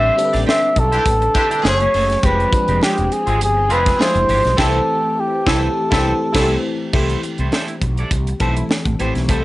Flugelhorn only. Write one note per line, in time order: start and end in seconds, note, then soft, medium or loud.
0.00 0.44 E5 loud
0.50 0.81 E5 loud
0.79 1.66 A4 loud
1.68 2.27 C#5 loud
2.26 2.85 B4 medium
2.83 3.14 G4 medium
3.13 3.42 G#4 medium
3.43 3.74 G#4 loud
3.72 4.03 B4 loud
4.02 4.59 C5 loud
4.60 5.21 A4 medium
5.20 5.51 G4 medium
5.49 6.65 A4 medium